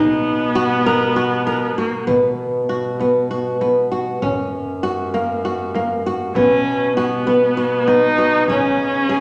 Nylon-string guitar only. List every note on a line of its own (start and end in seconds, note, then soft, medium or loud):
0.00 0.46 D#4 medium
0.55 0.82 F#4 medium
0.86 1.12 A#4 medium
1.16 1.42 F#4 medium
1.47 1.73 A#4 medium
1.78 2.04 F#4 medium
2.07 2.60 B3 medium
2.69 2.95 F#4 medium
3.00 3.26 B3 medium
3.31 3.57 F#4 medium
3.61 3.87 B3 medium
3.92 4.18 F#4 medium
4.22 4.74 C#4 medium
4.83 5.09 F#4 medium
5.14 5.40 A#3 medium
5.45 5.71 F#4 medium
5.75 6.01 A#3 medium
6.06 6.32 F#4 medium
6.36 6.88 B3 medium
6.97 7.23 F#4 medium
7.27 7.53 B3 medium
7.57 7.83 F#4 medium
7.87 8.14 B3 medium
8.18 8.45 F#4 medium
8.49 9.02 C#4 medium
9.09 9.20 G#4 medium